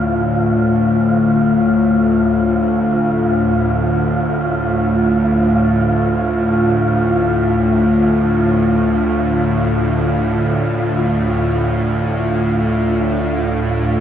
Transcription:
0.00 14.00 D2 medium
0.00 14.00 A2 medium
0.00 14.00 D4 medium
0.00 14.00 F4 medium
0.00 14.00 A4 medium
0.00 8.55 C5 medium
8.15 14.00 D5 medium

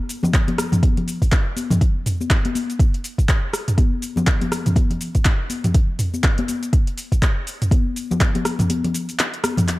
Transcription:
0.09 open hi-hat medium
0.09 shaker loud
0.23 high conga medium
0.23 low conga loud
0.23 shaker medium
0.34 kick loud
0.34 clap loud
0.34 closed hi-hat medium
0.34 shaker soft
0.48 closed hi-hat soft
0.48 high conga loud
0.48 low conga medium
0.58 cross-stick medium
0.58 open hi-hat medium
0.58 high conga medium
0.58 shaker loud
0.72 closed hi-hat soft
0.72 mid tom medium
0.72 low conga loud
0.72 shaker medium
0.83 kick loud
0.83 closed hi-hat medium
0.83 high conga loud
0.83 shaker soft
0.97 closed hi-hat soft
0.97 low conga medium
1.08 open hi-hat medium
1.08 shaker medium
1.22 kick medium
1.22 open hi-hat medium
1.22 shaker medium
1.32 kick loud
1.32 clap loud
1.32 closed hi-hat medium
1.32 shaker soft
1.57 open hi-hat medium
1.57 high conga medium
1.57 shaker medium
1.70 closed hi-hat soft
1.70 mid tom medium
1.70 low conga loud
1.70 shaker medium
1.81 kick loud
1.81 closed hi-hat medium
1.81 shaker soft
2.06 mid tom medium
2.06 open hi-hat medium
2.06 shaker medium
2.21 high conga medium
2.21 shaker medium
2.30 kick loud
2.30 clap loud
2.30 closed hi-hat medium
2.30 shaker soft
2.45 closed hi-hat soft
2.45 high conga loud
2.55 open hi-hat medium
2.55 high conga medium
2.55 shaker loud
2.70 closed hi-hat soft
2.70 shaker medium
2.79 kick loud
2.79 closed hi-hat medium
2.79 shaker soft
2.94 closed hi-hat soft
3.04 open hi-hat medium
3.04 shaker loud
3.18 kick medium
3.18 closed hi-hat soft
3.18 shaker medium
3.29 kick loud
3.29 clap loud
3.29 closed hi-hat medium
3.29 shaker soft
3.53 cross-stick medium
3.53 open hi-hat medium
3.53 shaker medium
3.68 closed hi-hat soft
3.68 mid tom medium
3.68 shaker medium
3.78 kick loud
3.78 closed hi-hat medium
3.78 high conga medium
3.78 shaker soft
4.02 open hi-hat medium
4.02 shaker medium
4.16 high conga medium
4.16 low conga loud
4.16 shaker medium
4.27 kick loud
4.27 clap loud
4.27 closed hi-hat medium
4.27 shaker soft
4.41 closed hi-hat soft
4.41 high conga loud
4.41 low conga medium
4.51 cross-stick medium
4.51 open hi-hat medium
4.51 high conga medium
4.51 shaker loud
4.66 closed hi-hat soft
4.66 mid tom medium
4.66 low conga loud
4.66 shaker medium
4.76 kick loud
4.76 closed hi-hat medium
4.76 high conga loud
4.76 shaker soft
4.90 closed hi-hat soft
4.90 low conga medium
5.01 open hi-hat medium
5.01 shaker medium
5.15 kick medium
5.15 closed hi-hat soft
5.15 shaker medium
5.25 kick loud
5.25 clap loud
5.25 closed hi-hat medium
5.25 shaker soft
5.50 open hi-hat medium
5.50 high conga medium
5.50 shaker medium
5.64 closed hi-hat soft
5.64 mid tom medium
5.64 low conga medium
5.64 shaker soft
5.74 kick loud
5.74 closed hi-hat medium
5.74 shaker soft
5.99 mid tom medium
5.99 open hi-hat medium
5.99 shaker medium
6.14 high conga medium
6.14 shaker medium
6.24 kick loud
6.24 clap loud
6.24 closed hi-hat medium
6.24 shaker soft
6.38 closed hi-hat soft
6.38 high conga loud
6.48 open hi-hat medium
6.48 high conga medium
6.48 shaker medium
6.63 closed hi-hat soft
6.63 shaker medium
6.73 kick loud
6.73 closed hi-hat medium
6.73 shaker soft
6.87 closed hi-hat soft
6.98 open hi-hat medium
6.98 shaker medium
7.12 kick medium
7.12 closed hi-hat soft
7.12 shaker medium
7.22 kick loud
7.22 clap loud
7.22 closed hi-hat medium
7.22 shaker soft
7.47 open hi-hat medium
7.47 shaker medium
7.62 closed hi-hat soft
7.62 mid tom medium
7.62 shaker soft
7.71 kick loud
7.71 closed hi-hat medium
7.71 high conga loud
7.71 shaker soft
7.96 open hi-hat medium
7.96 shaker medium
8.11 high conga medium
8.11 low conga loud
8.11 shaker medium
8.20 kick loud
8.20 clap loud
8.20 closed hi-hat medium
8.20 shaker soft
8.35 closed hi-hat soft
8.35 high conga loud
8.35 low conga medium
8.45 cross-stick medium
8.45 open hi-hat medium
8.45 high conga medium
8.45 shaker medium
8.59 closed hi-hat soft
8.59 mid tom medium
8.59 low conga loud
8.59 shaker medium
8.70 closed hi-hat medium
8.70 high conga medium
8.70 shaker soft
8.84 closed hi-hat soft
8.84 low conga medium
8.94 open hi-hat loud
8.94 shaker medium
9.09 open hi-hat medium
9.09 shaker medium
9.19 clap loud
9.19 closed hi-hat medium
9.19 shaker soft
9.34 closed hi-hat soft
9.44 cross-stick loud
9.44 open hi-hat medium
9.44 high conga medium
9.44 shaker medium
9.57 closed hi-hat soft
9.57 mid tom medium
9.57 low conga loud
9.57 shaker medium
9.68 clap medium
9.68 closed hi-hat medium
9.68 shaker soft

